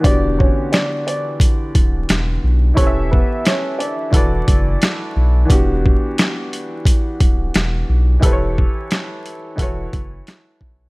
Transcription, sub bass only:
X:1
M:4/4
L:1/16
Q:"Swing 16ths" 1/4=88
K:Edor
V:1 name="Sub bass" clef=bass
E,,,3 z6 z D,,,2 E,,,2 B,,,2 | E,,,3 z4 z E,,,2 F,,,2 z2 B,,,2 | E,,,3 z6 z D,,,2 E,,,2 B,,,2 | E,,,3 z4 z E,,,2 F,,,2 z2 B,,,2 |]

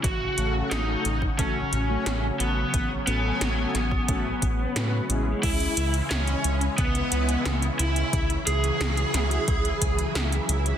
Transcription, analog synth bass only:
X:1
M:4/4
L:1/8
Q:1/4=89
K:F#dor
V:1 name="Analog synth bass" clef=bass
A,,, A,,, A,,, A,,, A,,, A,,, A,,, A,,, | A,,, A,,, A,,, A,,, A,,, A,,, A,, A,,, | [K:C#m] C,, C,, C,, C,, C,, C,, C,, C,, | C,, C,, C,, C,, C,, C,, C,, C,, |]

